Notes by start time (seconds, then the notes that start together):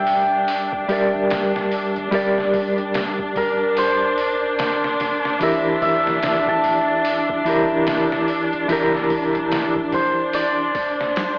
Already playing: G3 D4 G4 A#4 D5 E5 G5
0.07 D2, open hi-hat
0.48 open hi-hat
0.72 kick
0.88 G3 G4 A#4, open hi-hat
0.92 D5
1.14 G1
1.30 snare, open hi-hat
1.56 snare
1.71 open hi-hat
1.96 G1, closed hi-hat
2.11 G3 G4 A#4 D5, kick, open hi-hat
2.38 snare
2.53 kick, open hi-hat
2.78 D1, closed hi-hat
2.94 snare, open hi-hat
3.19 kick
3.36 D2 A#4, kick, open hi-hat
3.77 C5, open hi-hat
4.18 open hi-hat
4.59 snare, open hi-hat
4.83 D1, snare
5.00 G1, snare, open hi-hat
5.25 snare
5.39 E1 E3 E4 G4 E5, kick, open hi-hat
5.43 A#4
5.82 E5, kick, open hi-hat
6.06 A#1, snare
6.23 snare, open hi-hat
6.47 A5, kick
6.64 A#1, open hi-hat
7.05 open hi-hat
7.29 kick
7.45 E3 E4 G4, open hi-hat
7.49 A#4
7.71 E1
7.87 snare, open hi-hat
8.12 snare
8.28 open hi-hat
8.53 E1, closed hi-hat
8.68 E3 E4 G4, kick, open hi-hat
8.72 A#4
8.95 snare
9.10 kick, open hi-hat
9.35 A#1, closed hi-hat
9.52 snare, open hi-hat
9.76 kick
9.92 A#1 C5, kick, open hi-hat
10.33 D5, open hi-hat
10.75 kick, open hi-hat
11.01 snare
11.16 snare, open hi-hat